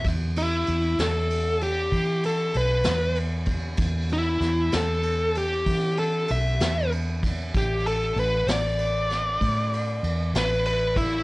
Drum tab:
RD |xxxxxxxxxxxx|xxxxxxxxxxxx|xxxxxxxxxxxx|
SD |---o-----o--|--oo-----o--|---o-o---o--|
BD |o-----o----o|o-----o----o|o-----o----o|